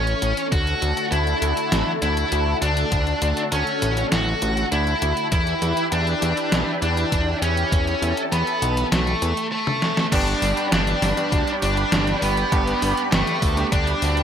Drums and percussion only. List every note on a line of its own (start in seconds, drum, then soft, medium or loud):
0.07 closed hi-hat soft
0.22 closed hi-hat medium
0.37 closed hi-hat soft
0.52 kick loud
0.52 closed hi-hat medium
0.67 closed hi-hat soft
0.82 closed hi-hat medium
0.97 closed hi-hat soft
1.12 closed hi-hat medium
1.27 closed hi-hat soft
1.42 closed hi-hat medium
1.57 closed hi-hat medium
1.72 snare loud
1.72 closed hi-hat medium
2.02 closed hi-hat medium
2.17 closed hi-hat soft
2.32 closed hi-hat medium
2.62 closed hi-hat medium
2.77 closed hi-hat soft
2.92 kick loud
2.92 closed hi-hat medium
3.07 closed hi-hat soft
3.22 closed hi-hat medium
3.37 closed hi-hat soft
3.52 closed hi-hat medium
3.67 closed hi-hat soft
3.82 closed hi-hat medium
3.97 closed hi-hat soft
4.12 snare loud
4.12 closed hi-hat medium
4.42 closed hi-hat medium
4.57 closed hi-hat soft
4.72 closed hi-hat medium
4.87 closed hi-hat soft
5.02 closed hi-hat medium
5.17 closed hi-hat soft
5.32 kick loud
5.32 closed hi-hat medium
5.47 closed hi-hat soft
5.62 snare soft
5.62 closed hi-hat medium
5.77 closed hi-hat soft
5.92 closed hi-hat medium
6.07 closed hi-hat soft
6.22 closed hi-hat medium
6.37 closed hi-hat medium
6.52 snare loud
6.52 closed hi-hat medium
6.82 closed hi-hat medium
6.97 closed hi-hat soft
7.12 kick loud
7.12 closed hi-hat medium
7.42 closed hi-hat medium
7.57 closed hi-hat medium
7.72 kick loud
7.72 closed hi-hat medium
7.87 closed hi-hat soft
8.02 closed hi-hat medium
8.17 closed hi-hat medium
8.32 closed hi-hat medium
8.47 closed hi-hat soft
8.62 closed hi-hat medium
8.77 closed hi-hat medium
8.92 snare loud
8.92 closed hi-hat medium
9.07 closed hi-hat soft
9.22 closed hi-hat medium
9.37 closed hi-hat medium
9.67 high tom medium
9.82 snare medium
9.97 snare medium
10.12 kick loud
10.12 closed hi-hat medium
10.12 crash loud
10.27 closed hi-hat soft
10.42 open hi-hat medium
10.57 closed hi-hat soft
10.72 snare loud
10.72 closed hi-hat medium
10.87 closed hi-hat soft
11.02 snare medium
11.02 open hi-hat medium
11.17 closed hi-hat soft
11.32 kick loud
11.32 closed hi-hat medium
11.47 closed hi-hat soft
11.62 open hi-hat medium
11.77 closed hi-hat soft
11.92 snare loud
11.92 closed hi-hat medium
12.07 closed hi-hat soft
12.22 open hi-hat medium
12.37 closed hi-hat soft
12.52 kick loud
12.52 closed hi-hat medium
12.67 closed hi-hat soft
12.82 open hi-hat medium
12.97 closed hi-hat soft
13.12 snare loud
13.12 closed hi-hat medium
13.27 closed hi-hat soft
13.42 kick loud
13.42 open hi-hat medium
13.57 closed hi-hat soft
13.72 kick loud
13.72 closed hi-hat medium
13.87 closed hi-hat soft
14.02 open hi-hat medium
14.17 closed hi-hat soft